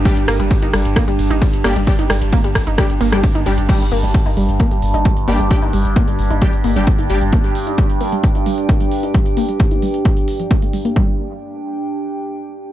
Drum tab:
CC |----------------|----------------|x---------------|----------------|
RD |xxxxxxxxxxxxxxxx|xxxxxxxxxxxxxxxx|----------------|----------------|
HH |xxoxxxoxxxoxxxox|xxoxxxoxxxoxxxox|xxoxxxoxxxoxxxox|xxoxxxoxxxoxxxox|
SD |--r---r-r-----r-|--r---r-r--r----|----------------|----------------|
BD |o---o---o---o---|o---o-o-o---o---|o---o---o---o---|o---o---o---o---|

CC |----------------|----------------|----------------|
RD |----------------|----------------|----------------|
HH |xxoxxxoxxxoxxxox|xxoxxxoxxxoxxxox|----------------|
SD |----------------|----------------|----------------|
BD |o---o---o---o---|o---o---o---o---|o---------------|